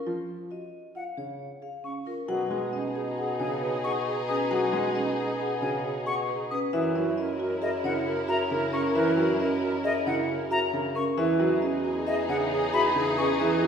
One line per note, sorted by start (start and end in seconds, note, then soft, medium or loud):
0.00 0.13 A#4 medium
0.07 0.35 F3 medium
0.07 0.35 F4 medium
0.51 0.80 F#4 soft
0.51 0.80 D#5 soft
0.95 1.24 F4 soft
0.95 1.24 F5 soft
0.95 1.04 F#5 soft
1.17 1.46 C#3 soft
1.17 1.46 G#4 soft
1.17 1.47 C#5 soft
1.62 1.91 G#4 soft
1.62 1.91 F5 soft
1.84 2.13 C#4 soft
1.84 1.93 C#6 soft
2.06 2.35 F4 medium
2.06 2.36 A#4 medium
2.28 6.60 B2 medium
2.28 2.58 F#3 medium
2.28 6.47 D#4 medium
2.28 2.49 F#4 medium
2.28 2.44 G#4 soft
2.28 6.47 G#4 medium
2.28 2.58 F#5 medium
2.50 2.80 G#3 medium
2.50 2.80 F#4 medium
2.50 2.67 G#4 soft
2.73 3.02 C#4 medium
2.73 2.89 G#4 soft
2.73 3.02 D#5 medium
2.96 3.24 G#4 medium
2.96 3.11 G#4 medium
3.17 3.33 G#4 medium
3.17 3.46 F#5 medium
3.40 3.69 C#3 medium
3.40 3.69 F#4 medium
3.40 3.56 G#4 medium
3.40 3.69 C#5 medium
3.40 3.48 G#5 medium
3.62 3.78 G#4 medium
3.62 3.91 B4 medium
3.84 4.13 G#4 medium
3.84 4.00 G#4 medium
3.84 4.13 F#5 medium
3.84 3.92 C#6 medium
4.06 4.22 G#4 medium
4.06 4.35 B4 medium
4.29 4.58 C#4 medium
4.29 4.44 G#4 medium
4.29 4.58 B4 medium
4.29 4.37 D#6 medium
4.51 4.80 F#3 medium
4.51 4.72 F#4 medium
4.51 4.66 G#4 medium
4.51 4.80 F#5 medium
4.73 5.02 G#3 medium
4.73 5.02 F#4 medium
4.73 4.88 G#4 medium
4.95 5.24 C#4 medium
4.95 5.11 G#4 medium
4.95 5.24 D#5 medium
5.18 5.33 G#4 medium
5.18 5.47 G#4 medium
5.40 5.55 G#4 medium
5.40 5.69 F#5 medium
5.62 5.91 C#3 medium
5.62 5.91 F#4 medium
5.62 5.78 G#4 medium
5.62 5.91 C#5 medium
5.62 5.70 G#5 medium
5.84 6.00 G#4 medium
5.84 6.13 B4 medium
6.06 6.35 G#4 medium
6.06 6.22 G#4 soft
6.06 6.35 F#5 medium
6.06 6.15 C#6 medium
6.29 6.44 G#4 soft
6.29 6.58 B4 medium
6.51 6.80 C#4 medium
6.51 6.80 B4 medium
6.51 6.59 D#6 medium
6.73 11.05 F#2 medium
6.73 7.02 E3 medium
6.73 10.91 E4 medium
6.73 6.94 E4 medium
6.73 10.91 A#4 medium
6.73 6.89 A#4 soft
6.73 7.02 E5 medium
6.95 7.24 F#3 medium
6.95 7.24 E4 medium
6.95 7.11 A#4 soft
7.17 7.47 C#4 medium
7.17 7.33 A#4 soft
7.17 7.47 D#5 medium
7.40 7.69 F#4 medium
7.40 7.55 A#4 medium
7.62 7.91 G#4 medium
7.62 7.78 A#4 medium
7.62 7.70 D#5 medium
7.62 7.91 E5 medium
7.84 8.13 C#3 medium
7.84 8.13 E4 medium
7.84 8.00 A#4 medium
7.84 8.13 C#5 medium
7.84 7.93 F#5 medium
8.06 8.35 G#4 medium
8.06 8.22 A#4 medium
8.28 8.57 F#4 loud
8.28 8.44 A#4 medium
8.28 8.58 E5 medium
8.28 8.37 A#5 loud
8.50 8.80 C#3 medium
8.50 8.80 G#4 medium
8.50 8.67 A#4 loud
8.73 9.02 C#4 medium
8.73 9.02 A#4 medium
8.73 8.89 A#4 medium
8.73 8.82 C#6 medium
8.95 9.24 E3 medium
8.95 9.16 E4 medium
8.95 9.11 A#4 loud
8.95 9.24 E5 medium
9.17 9.46 F#3 medium
9.17 9.46 E4 medium
9.17 9.33 A#4 medium
9.40 9.69 C#4 medium
9.40 9.56 A#4 medium
9.40 9.69 D#5 medium
9.62 9.91 F#4 medium
9.62 9.78 A#4 medium
9.84 10.13 G#4 medium
9.84 10.00 A#4 medium
9.84 9.93 D#5 loud
9.84 10.13 E5 medium
10.06 10.35 C#3 medium
10.06 10.35 E4 medium
10.06 10.22 A#4 medium
10.06 10.36 C#5 medium
10.06 10.15 F#5 medium
10.29 10.58 G#4 medium
10.29 10.44 A#4 medium
10.51 10.80 F#4 loud
10.51 10.67 A#4 medium
10.51 10.80 E5 medium
10.51 10.60 A#5 loud
10.73 11.02 C#3 medium
10.73 11.02 G#4 medium
10.73 10.89 A#4 soft
10.95 11.24 C#4 medium
10.95 11.24 A#4 medium
10.95 11.04 C#6 medium
11.17 13.67 E2 medium
11.17 11.46 E3 loud
11.17 13.67 D#4 medium
11.17 11.38 E4 loud
11.17 13.67 G#4 medium
11.17 11.33 G#4 soft
11.17 11.47 E5 loud
11.40 11.69 F#3 medium
11.40 11.69 E4 medium
11.40 11.56 G#4 soft
11.62 11.91 C#4 medium
11.62 11.78 G#4 medium
11.62 11.91 D#5 medium
11.84 12.13 F#4 medium
11.84 12.00 G#4 medium
12.07 12.35 G#4 medium
12.07 12.22 G#4 medium
12.07 12.15 D#5 medium
12.07 12.36 E5 medium
12.29 12.58 C#3 medium
12.29 12.58 E4 medium
12.29 12.45 G#4 medium
12.29 12.58 C#5 medium
12.29 12.37 F#5 medium
12.51 12.67 G#4 medium
12.51 12.80 G#4 medium
12.73 13.02 F#4 loud
12.73 12.89 G#4 medium
12.73 13.02 E5 medium
12.73 12.82 B5 loud
12.95 13.24 C#3 medium
12.95 13.24 G#4 medium
12.95 13.11 G#4 medium
13.18 13.47 C#4 medium
13.18 13.33 G#4 medium
13.18 13.47 B4 medium
13.18 13.26 C#6 medium
13.40 13.67 E3 loud
13.40 13.61 E4 medium
13.40 13.56 G#4 medium
13.40 13.67 E5 medium
13.62 13.67 F#3 medium
13.62 13.67 E4 medium
13.62 13.67 G#4 medium